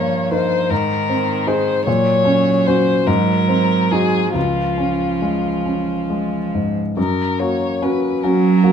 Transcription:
Already playing: grand piano G2 A#3, cello F3, violin C#5
0.31 grand piano D#4 A#4, violin C5
0.69 grand piano G#2, cello D#3, violin A#4
1.09 grand piano C4
1.47 grand piano D#4 G#4, violin C5
1.86 grand piano A#2, cello F#3, violin C#5
2.25 grand piano C#4
2.66 grand piano C#4 F#4, violin C5
3.07 grand piano G#2, cello F#3, violin A#4
3.49 grand piano C4
3.92 grand piano D#4 F#4, violin G#4
4.34 grand piano C#2, cello F3, violin F4
4.78 grand piano C#4
5.22 grand piano G#3
5.66 grand piano C#4
6.10 grand piano G#3
6.55 grand piano G#2
6.97 grand piano F#2, violin A#4
7.39 grand piano A#3 F#4, violin C#5
7.82 grand piano C#4 F#4, violin B4
8.21 cello F#3, grand piano C#4 F#4, violin A#4
8.64 grand piano A#3 F#4

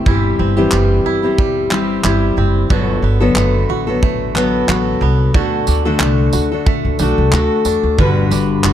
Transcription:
Already playing: steel-string acoustic guitar E3, five-string banjo C4
0.06 upright bass G1, five-string banjo E3 E4, steel-string acoustic guitar G3 C4 E4 G4, kick
0.39 upright bass G1, five-string banjo C4
0.57 steel-string acoustic guitar E3 G3 C4 E4 G4
0.71 upright bass F#1, five-string banjo G3, clap
1.06 upright bass G1, five-string banjo E4
1.23 steel-string acoustic guitar G3 C4 E4 G4
1.38 five-string banjo G3, kick
1.71 steel-string acoustic guitar G3 C4 E4 G4, five-string banjo C4, clap
2.04 upright bass G1, steel-string acoustic guitar G3 C4 E4 G4, five-string banjo E4, clap
2.37 upright bass F#1, five-string banjo C4
2.69 upright bass G1, five-string banjo D3 F#4, steel-string acoustic guitar F#3 B3 F#4 A4, kick
3.02 upright bass G1, five-string banjo B3
3.20 steel-string acoustic guitar D3 F#3 B3 F#4 A4
3.35 upright bass F#1, five-string banjo A3, clap
3.69 upright bass A1, five-string banjo F#4
3.87 steel-string acoustic guitar F#3 B3 F#4 A4
4.03 five-string banjo A3, kick
4.35 steel-string acoustic guitar F#3 B3 F#4 A4, five-string banjo B3, clap
4.68 upright bass A1, steel-string acoustic guitar F#3 B3 F#4 A4, five-string banjo F#4, clap
5.01 upright bass C2, five-string banjo B3
5.34 upright bass D2, five-string banjo D3 F#4, steel-string acoustic guitar A3 D4 F#4 A4, kick
5.67 upright bass D2, five-string banjo D4, tambourine
5.85 steel-string acoustic guitar D3 A3 D4 F#4 A4
6.00 upright bass C2, five-string banjo A3, clap
6.33 upright bass D2, five-string banjo F#4, tambourine
6.52 steel-string acoustic guitar D4 F#4 A4
6.66 five-string banjo A3, kick
6.85 upright bass D2
6.99 upright bass B1, steel-string acoustic guitar A3 D4 F#4 A4, five-string banjo D4, tambourine
7.18 upright bass C2
7.32 upright bass D2, steel-string acoustic guitar A3 D4 F#4 A4, five-string banjo F#4, clap
7.65 upright bass E2, five-string banjo D4, tambourine
7.83 upright bass D2
7.99 upright bass G1, steel-string acoustic guitar G2 D3 G3 D4 F#4 B4, five-string banjo D3, kick
8.31 upright bass G1, five-string banjo D4, tambourine
8.64 upright bass F#1, five-string banjo F#4, clap

